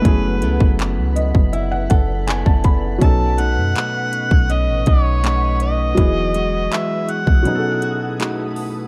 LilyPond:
<<
  \new Staff \with { instrumentName = "Ambient pad" } { \time 4/4 \key b \mixolydian \tempo 4 = 81 << { r1 | <dis'' cis'''>1 | r1 | } \\ { <b' fis''>1~ | <b' fis''>1 | fis''1 | } >> }
  \new Staff \with { instrumentName = "Harmonica" } { \time 4/4 \key b \mixolydian b'4 r2. | a''8 fis''4. dis''8 cis''4 dis''8~ | dis''4 e''8 fis''4. r4 | }
  \new Staff \with { instrumentName = "Felt piano" } { \time 4/4 \key b \mixolydian << { r4. dis''8 e''16 fis''16 fis''8 gis''16 a''16 b''8 | r1 | r1 | } \\ { <a b cis' e' gis'>1 | <fis b cis' dis' a'>1 | <fis b e' fis' gis'>2 <fis b cis' dis' gis' a'>2 | } >> }
  \new Staff \with { instrumentName = "Clean electric guitar" } { \time 4/4 \key b \mixolydian <fis b e' a'>8 <b e' a'>8 b4 e'8 a'8 <b e' a'>4 | b,8 <a cis' dis'>8 a4 cis'8 dis'8 <a cis' dis'>4 | e8 <gis fis'>8 gis4 b,8 fis'8 <a dis' fis'>4 | }
  \new Staff \with { instrumentName = "808-style bass" } { \clef bass \time 4/4 \key b \mixolydian fis,,8 cis,16 fis,,8 cis,8 fis,,8. fis,,8. fis,,8. | b,,8. fis,16 r8. b,,8 a,,16 b,,4. | e,,4 r8. b,,16 r2 | }
  \new DrumStaff \with { instrumentName = "Drums" } \drummode { \time 4/4 <hh bd>8 hh16 bd16 <hc hh>8 hh16 bd16 hh8 <hh bd>8 <hc hh>16 bd16 <hh bd>8 | <hh bd>8 hh8 <hc hh>8 hh16 bd16 hh8 <hh bd>8 <hc hh>8 hh8 | <hh bd>8 hh8 <hc hh>8 hh16 bd16 hh8 hh8 <hc hh>8 hho8 | }
>>